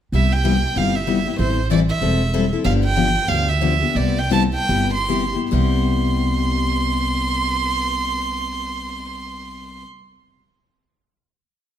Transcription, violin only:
0.14 E5
0.32 G5
0.77 F5
0.95 E5
1.40 C5
1.71 D5
1.89 E5
2.65 F5
2.84 G5
3.28 F5
3.49 E5
3.97 D5
4.18 G5
4.32 A5
4.55 G5
4.94 C6
5.52 C6

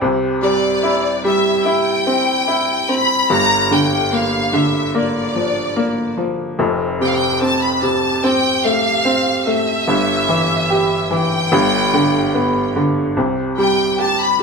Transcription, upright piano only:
0.01 C2 C3
0.42 G3
0.83 E4
1.24 G3
1.65 E4
2.07 C4
2.47 E4
2.89 C4
3.30 G1 G2
3.71 D3
4.12 A#3
4.53 D3
4.95 A#3
5.35 F3
5.76 A#3
6.17 F3
6.59 F1 F2
7.00 C3
7.41 C4
7.82 C3
8.24 C4
8.65 A3
9.05 C4
9.47 A3
9.88 G1 G2
10.29 E3
10.70 G4
11.11 E3
11.52 G1 G2
11.93 D3
12.34 B3
12.76 D3
13.16 C2 C3
13.58 G3
13.99 G4
14.39 G3

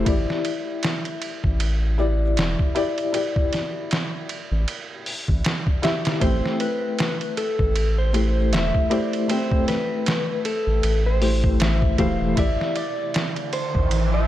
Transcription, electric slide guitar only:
6.22 C5
6.60 B4
7.38 A4
7.98 C5
8.53 E5
8.92 D5
9.30 C5
9.68 B4
10.45 A4
11.06 C5
11.61 E5
12.00 F5
12.39 E5
12.77 D5
13.53 C5
14.14 E5

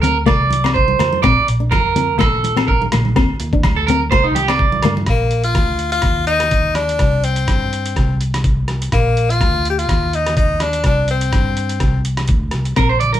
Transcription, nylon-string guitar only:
0.03 C4
0.26 A#3
0.64 C4
0.99 A#3
1.24 C4
1.60 D4
1.96 C4
2.19 A#3
2.57 C4
2.93 A#3
3.16 C4
3.53 D4
3.90 C4
4.12 A#3
4.50 C4
4.85 A#3
12.77 C4

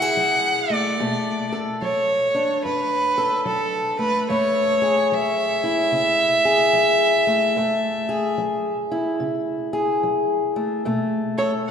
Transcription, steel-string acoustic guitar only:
Already playing: C#3 A3 E4
0.02 G#4
0.17 F#3
0.70 A3
1.00 B2 A3
1.52 A4
1.82 F#3
2.34 D4
2.65 F#2
3.18 A4
3.45 F#3
3.99 A3
4.29 F#2 A3
4.82 G#4
5.12 F#3
5.64 E4
5.92 C#3
6.45 G#4
6.73 F#3
7.27 A3
7.56 F#2 A3
8.09 G#4
8.38 F#3
8.91 E4
9.20 C#3
9.73 G#4
10.03 F#3
10.56 A3
10.85 B2 A3
11.38 A4

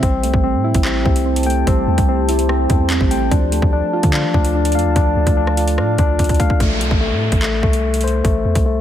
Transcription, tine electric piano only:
0.03 C4
0.44 C4
0.85 C4
1.05 C4
1.46 G5
1.67 C4
2.09 C4
2.49 C4
2.69 C4
3.11 G5
3.31 D4
3.73 D4
4.13 D4
4.34 D4
4.75 F5
4.96 D4
5.37 D4
5.78 D4
5.99 D4
6.40 F5
6.60 A3
7.01 A3
7.42 A3
7.63 A3
8.04 C5
8.24 A3
8.66 A3

